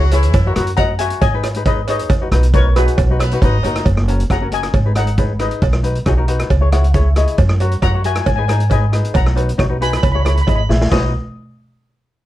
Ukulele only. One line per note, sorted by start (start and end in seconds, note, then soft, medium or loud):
0.13 0.33 E4 loud
0.13 0.33 G#4 medium
0.13 0.33 C#5 medium
0.46 0.53 F#4 medium
0.46 0.53 A#4 medium
0.46 0.53 C#5 loud
0.56 0.70 F#4 medium
0.56 0.70 A#4 medium
0.56 0.70 C#5 medium
0.78 0.92 F#4 medium
0.78 0.92 A#4 medium
0.78 0.92 D#5 medium
1.00 1.20 F#4 medium
1.00 1.20 A#4 medium
1.00 1.20 C#5 medium
1.34 1.47 D#4 medium
1.34 1.47 G#4 medium
1.34 1.47 B4 medium
1.56 1.62 D#4 medium
1.56 1.62 G#4 medium
1.56 1.63 B4 medium
1.67 1.80 D#4 medium
1.67 1.80 G#4 medium
1.67 1.80 B4 medium
1.88 2.08 D#4 medium
1.88 2.08 G#4 medium
1.88 2.09 C#5 medium
2.21 2.28 D#4 medium
2.21 2.28 F#4 medium
2.21 2.28 B4 medium
2.32 2.46 D#4 medium
2.32 2.46 F#4 medium
2.32 2.46 B4 medium
2.54 2.68 D#4 medium
2.54 2.68 F#4 medium
2.54 2.68 B4 medium
2.77 2.96 D#4 medium
2.77 2.96 F#4 medium
2.77 2.97 G#4 medium
3.10 3.23 D#4 medium
3.10 3.23 F#4 medium
3.10 3.23 B4 medium
3.32 3.38 D#4 medium
3.32 3.38 F#4 medium
3.32 3.39 B4 medium
3.43 3.56 D#4 loud
3.43 3.56 F#4 medium
3.43 3.57 B4 loud
3.64 3.84 D#4 medium
3.64 3.84 F#4 medium
3.64 3.85 A#4 loud
4.08 4.22 C#4 medium
4.08 4.22 F#4 medium
4.08 4.22 A#4 medium
4.30 4.37 C#4 medium
4.30 4.37 F#4 medium
4.30 4.38 G#4 medium
4.41 4.48 C#4 medium
4.41 4.48 F#4 medium
4.41 4.48 A#4 medium
4.51 4.72 C#4 medium
4.51 4.72 F#4 medium
4.51 4.72 A#4 medium
4.85 4.92 D#4 medium
4.85 4.92 G#4 medium
4.85 4.92 B4 medium
4.96 5.09 D#4 medium
4.96 5.10 G#4 medium
4.96 5.10 A#4 medium
5.18 5.32 D#4 medium
5.18 5.32 G#4 medium
5.18 5.32 B4 medium
5.40 5.62 D#4 medium
5.40 5.62 G#4 medium
5.40 5.63 B4 medium
5.83 5.97 D#4 medium
5.83 5.98 F#4 medium
5.83 5.98 B4 medium
6.06 6.13 D#4 medium
6.06 6.13 F#4 medium
6.06 6.14 G#4 medium
6.17 6.24 D#4 medium
6.17 6.24 F#4 medium
6.17 6.24 A#4 medium
6.28 6.48 D#4 medium
6.28 6.48 F#4 medium
6.28 6.49 B4 medium
6.61 6.68 E4 medium
6.61 6.68 G#4 medium
6.61 6.68 C#5 medium
6.72 6.86 E4 medium
6.72 6.86 G#4 medium
6.72 6.86 C#5 medium
6.72 6.93 F#5 medium
6.94 7.08 E4 medium
6.94 7.08 G#4 medium
6.94 7.08 C#5 loud
6.94 7.15 E5 medium
7.17 7.39 E4 medium
7.17 7.39 G#4 medium
7.17 7.37 C#5 medium
7.17 7.39 D#5 medium
7.61 7.74 F#4 medium
7.61 7.75 A#4 medium
7.61 7.75 C#5 loud
7.83 7.90 F#4 medium
7.83 7.90 A#4 medium
7.83 7.90 C#5 medium
7.94 8.00 F#4 medium
7.94 8.01 A#4 medium
7.94 8.01 C#5 medium
8.05 8.25 F#4 medium
8.05 8.25 A#4 medium
8.05 8.25 C#5 medium
8.38 8.44 D#4 medium
8.38 8.45 G#4 medium
8.38 8.45 B4 medium
8.49 8.62 D#4 medium
8.49 8.63 G#4 medium
8.49 8.63 A#4 medium
8.70 8.84 D#4 medium
8.70 8.85 G#4 medium
8.70 8.85 B4 medium
8.92 9.15 D#4 medium
8.92 9.15 G#4 medium
8.92 9.15 B4 medium
9.36 9.50 D#4 medium
9.36 9.50 F#4 medium
9.36 9.51 B4 medium
9.58 9.65 D#4 medium
9.58 9.66 F#4 medium
9.58 9.66 C#5 medium
9.69 9.76 D#4 medium
9.69 9.77 F#4 medium
9.69 9.77 B4 medium
9.81 10.01 D#4 medium
9.81 10.01 F#4 medium
9.81 10.01 B4 medium
10.14 10.21 E4 medium
10.14 10.21 G#4 medium
10.14 10.21 C#5 medium
10.25 10.39 E4 medium
10.25 10.39 G#4 medium
10.25 10.39 C#5 medium
10.47 10.61 E4 medium
10.47 10.61 G#4 medium
10.47 10.61 D#5 medium
10.69 10.91 E4 medium
10.69 10.90 G#4 medium
10.69 10.92 E5 medium
10.91 11.12 D#4 medium
10.91 11.12 F#4 medium
10.91 11.12 B4 medium